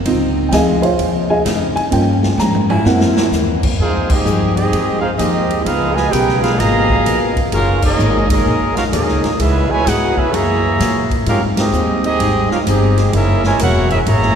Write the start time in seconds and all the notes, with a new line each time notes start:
0.04 C#2 C3 C#3 F3 C4 D#4 F4, kick, ride
0.49 D2 C#3 F3 C4 D#4 G5, kick, snare, hi-hat pedal, ride
0.53 G#4 D#5 F5 G#5
0.82 F4 C5 C#5 F5, ride
0.97 D#2 C#3 F3 C4 D#4, kick, ride
1.30 G#4 D#5 F5 G#5
1.45 F2 C#3 F3 C4 D#4, kick, snare, hi-hat pedal, ride
1.76 G#5, muted upright bass stroke, ride
1.91 G2 F3 A#3 C#4 F4 G5, kick, ride
2.23 snare
2.38 G2 G#2 F3 A#3 C#4 A#5, snare, hi-hat pedal
2.55 floor tom
2.69 C3 F#3 A#3 E4 G#5, floor tom
2.84 F#2 E3 A#3 C4 E4 F#5, snare
3.01 snare
3.15 C3 F#3 A#3 E4, snare
3.32 D#2 F#2 E3 A#3 C4, snare, hi-hat pedal
3.63 kick, crash
3.78 F2 F3 G#3 A#3 C4 D#4 F4 G#4 C5 F5, kick
3.82 D#4 G#4
4.09 G#3 C4 D#4 G4 G#4 D#5, kick, crash
4.25 G2 F3 A#3 D#4 G#4, hi-hat pedal
4.54 G#3 C4 D#4 G4 G#4 D#5, ride
4.71 F2 F3 A#3 D#4 G#4, kick, ride
5.00 G#3 C4 D#4 F4 G#4 C5 F5
5.16 D#2 F3 G#3 A#3 C4 D#4 G4 G#4 D#5, kick, hi-hat pedal, ride
5.50 ride
5.62 C#2 C#3 G#3 B3 D#4 F4 G#4 B4 F5, kick
5.66 B3 F4 A#4, ride
5.92 B2 F3 G#3 F4 B4 D#5 G#5
5.97 snare
6.10 B1 C#3 B3 D#4 F4 G4 G#4 B4 G5, kick, hi-hat pedal, ride
6.14 A#4
6.28 snare
6.40 G#3 B3 D#4 F4 G#4 B4 F5, ride
6.44 snare
6.56 G#1 B2 C#3 F3 A#3 B3 F4 G#4 D#5 F5 A#5, kick, snare, ride
6.61 A#4
6.90 kick
7.04 A#1 C#3 B3 F4 A#4, kick, hi-hat pedal, ride
7.36 kick, ride
7.50 F#1 F#3 A#3 C#4 D#4 F4 F#4 G#4 A#4 F5, kick, ride
7.82 D#3 A#3 C#4 D#4 G#4 A#4 D#5, kick, crash
7.98 G#1 F#3 A#3 D#4 G#4, hi-hat pedal
8.28 D#3 A#3 C#4 D#4 G#4 A#4 D#5, kick, ride
8.45 A#1 F#3 A#3 D#4 G#4, kick
8.75 C#4 F4 F#4 A#4 F5, snare, ride
8.90 D#2 D#3 F#3 A#3 C#4 D#4 G#4 A#4 D#5, kick, hi-hat pedal, ride
9.08 C#2, snare
9.24 A#1, snare, ride
9.36 C#2 C#3 G#3 B3 C#4 E4 G#4 B4 E5, kick, ride
9.41 B3 E4 G#4
9.68 B2 E3 G#3 E4 B4 C#5 G#5
9.84 G#2 C#3 B3 D#4 E4 F#4 G#4 B4 F#5, kick, snare, hi-hat pedal, ride
9.88 G#4
10.16 G#3 B3 C#4 E4 G#4 B4 E5, muted upright bass stroke, kick
10.32 F#2 C#3 E3 F#3 A#3 E4 G#4 C#5 E5 A#5, kick, ride
10.78 A#2 F#3 A#3 E4 G#4, kick, snare, hi-hat pedal, ride
11.11 kick, ride
11.26 G#2 G3 C4 C#4 D#4 F4 G4 A#4 F5, kick, ride
11.57 G#3 C4 D#4 G4 G#4 D#5, snare, ride
11.72 D#2 G#2 G3 C4 D#4, hi-hat pedal
12.04 G#3 C4 D#4 G4 G#4 D#5, ride
12.19 G#1 G#2 G3 C4 D#4, kick, ride
12.51 C#4 F4 G4 A#4 F5, muted upright bass stroke, snare
12.66 G1 G#2 G3 G#3 C4 D#4 G4 G#4 D#5, kick, hi-hat pedal, ride
12.97 snare, ride
13.13 F#1 F#3 A#3 C#4 E4 G#4 A#4 E5, kick, ride
13.44 C#3 E3 G#3 E4 A#4 C#5 G#5, snare
13.59 E1 F#3 A#3 C#4 E4 F#4 G#4 A#4 C#5 F#5, kick, hi-hat pedal, ride
13.90 A#3 C#4 E4 G#4 A#4 E5, ride
14.06 G#1 C#3 E3 F#3 A#3 E4 G#4 C#5 E5 A#5, kick, ride
14.22 snare